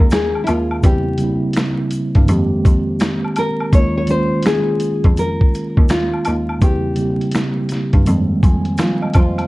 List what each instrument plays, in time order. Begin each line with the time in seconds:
Already playing: tine electric piano D#3 G#3 A#3 C#4 G#4, nylon-string guitar A#4
0.00 cello D#2
0.10 nylon-string guitar G#4, finger snap, snare, closed hi-hat, shaker
0.35 high woodblock
0.44 nylon-string guitar E4, closed hi-hat, high woodblock, shaker
0.49 cello D#2, nylon-string guitar F4
0.71 high woodblock
0.81 cello E2, tine electric piano C#3 G3 A#3, kick, closed hi-hat, shaker
0.85 tine electric piano C4 E4, nylon-string guitar G4
1.18 tine electric piano C#3 G3 A#3, closed hi-hat, shaker
1.22 tine electric piano C4 E4
1.53 finger snap, snare, closed hi-hat, shaker
1.91 closed hi-hat, shaker
2.15 cello G2, kick, closed hi-hat
2.26 cello F2, tine electric piano D#3 G#3 A#3, closed hi-hat, shaker
2.30 tine electric piano C4 G4
2.65 cello F2, kick, closed hi-hat, shaker
3.00 finger snap, snare, closed hi-hat, shaker
3.24 high woodblock
3.36 nylon-string guitar A#4, closed hi-hat, high woodblock, shaker
3.60 high woodblock
3.71 cello D#2, tine electric piano D#3 G#3 A#3, nylon-string guitar C#5, kick, closed hi-hat, shaker
3.75 tine electric piano C#4 F4
3.97 nylon-string guitar C#5
4.07 tine electric piano D#3 G#3 A#3, nylon-string guitar C5, closed hi-hat, shaker
4.11 tine electric piano C#4 F4
4.42 nylon-string guitar G#4, finger snap, snare, closed hi-hat, shaker
4.80 closed hi-hat, shaker
5.04 cello F2, kick, closed hi-hat
5.17 nylon-string guitar A#4, closed hi-hat, shaker
5.41 kick
5.54 closed hi-hat, shaker
5.77 cello D#2, kick
5.89 nylon-string guitar F4, finger snap, snare, closed hi-hat, shaker
6.13 high woodblock
6.25 cello D#2, closed hi-hat, high woodblock, shaker
6.49 high woodblock
6.59 cello E2, tine electric piano C#3 G3 A#3, kick, closed hi-hat, shaker
6.63 tine electric piano C4 E4, nylon-string guitar G4
6.95 tine electric piano C#3 G3 A#3, closed hi-hat, shaker
7.00 tine electric piano C4 G4
7.21 closed hi-hat
7.31 finger snap, snare, closed hi-hat, shaker
7.69 snare, closed hi-hat, shaker
7.93 cello G2, kick, closed hi-hat
8.04 cello F2, tine electric piano D#3 G#3 A#3, closed hi-hat, shaker
8.08 tine electric piano G3 C4
8.43 cello F2, tine electric piano G#5, kick, closed hi-hat, shaker
8.65 closed hi-hat
8.78 cello F3, tine electric piano F5, finger snap, snare, closed hi-hat, shaker
9.02 tine electric piano D#5, high woodblock
9.14 cello F2, nylon-string guitar F4, tine electric piano C5, kick, closed hi-hat, high woodblock, shaker
9.38 closed hi-hat, high woodblock